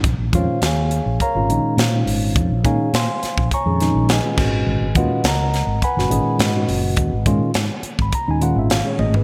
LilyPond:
<<
  \new Staff \with { instrumentName = "Tine electric piano" } { \time 4/4 \key bes \phrygian \tempo 4 = 104 r8 <c'' des'' f''>8 <aes' des'' f'' aes''>4 <bes' des'' f'' bes''>4 <f' c'' des'' f''>4~ | <f' c'' des'' f''>8 <aes' des'' f'' aes''>8 <c'' f'' aes'' c'''>4 <des'' aes'' bes'' des'''>4 <aes' ces'' ees'' aes''>4~ | <aes' ces'' ees'' aes''>8 <ges' ces'' ees'' ges''>8 <bes' ees'' ges'' bes''>4 <ces'' ges'' aes'' ces'''>4 <ges' ces'' ees'' ges''>4~ | <ges' ces'' ees'' ges''>8 r4 r16 ces'''16 bes''16 aes''16 ges''16 e''16 f''16 des''16 ees''16 ces''16 | }
  \new Staff \with { instrumentName = "Tine electric piano" } { \clef bass \time 4/4 \key bes \phrygian r8 <bes, ees aes des' f'>8 <des' f'>16 r4 <bes, ees aes des' f'>16 <bes, ees aes des' ees'>8 r16 <bes, ees aes des' ees'>8.~ | <bes, ees aes des' ees'>16 r16 <bes, ees aes des' ees'>8 <des' ees'>16 r4 <bes, ees aes des' aes'>16 <bes, ees aes des' ees'>8 r16 <bes, ees aes des' f'>16 <bes, ees aes des' ges'>8~ | <bes, ees aes des' ges'>16 r16 <bes, ees aes des' f'>8 <des' ges'>16 r4 <bes, ees aes des' ges'>16 <bes, ees aes des' aes'>8 r16 <bes, ees aes des' ges'>8.~ | <bes, ees aes des' ges'>16 r16 <bes, ees aes des' f'>8 r4 r16 <bes, ees aes des' ees'>16 <bes, ees aes des' f'>8 r16 <bes, ees aes des' aes'>8. | }
  \new Staff \with { instrumentName = "Fretless electric bass" } { \clef bass \time 4/4 \key bes \phrygian bes,,16 bes,,16 f,16 r16 ees,8. bes,,16 r16 aes,,16 bes,,16 r16 bes,8 aes,,8 | f,16 bes,,16 bes,16 r16 bes,16 r8 bes,,16 r16 f,8 bes,,8 r16 aes,,8 | aes,,16 aes,,16 ees,16 r16 des,8. aes,,16 r16 ges,,16 aes,,16 r16 aes,8 ges,,8 | ees,16 aes,,16 aes,16 r16 aes,16 r8 aes,,16 r16 ees,8 aes,,8 r16 aes,,8 | }
  \new DrumStaff \with { instrumentName = "Drums" } \drummode { \time 4/4 <hh bd>8 <hh bd>8 <hh sn>8 hh8 <hh bd>8 hh8 <hh sn>8 hho8 | <hh bd>8 <hh bd>8 <hh sn>8 <hh sn>16 bd16 <hh bd>8 <hh sn>8 <hh sn>8 <cymc bd sn>8 | r8 <hh bd>8 <hh sn>8 <hh sn>8 <hh bd>16 sn16 hh8 <hh sn>8 hho8 | <hh bd>8 <hh bd>8 <hh sn>8 hh16 bd16 <hh bd>8 hh8 <hh sn>8 tommh16 tomfh16 | }
>>